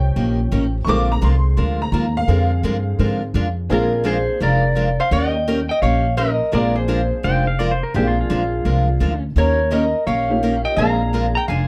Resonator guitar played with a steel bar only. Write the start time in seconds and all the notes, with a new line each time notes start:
3.72 F4
4.06 G#4
4.42 A#4
5.00 C5
5.13 D#5
5.71 D#5
5.82 C#5
6.17 A#4
6.53 A#4
6.76 G#4
9.38 A#4
9.73 A#4
10.07 C#5
10.65 D#5
10.76 F5
11.37 G5
11.48 F5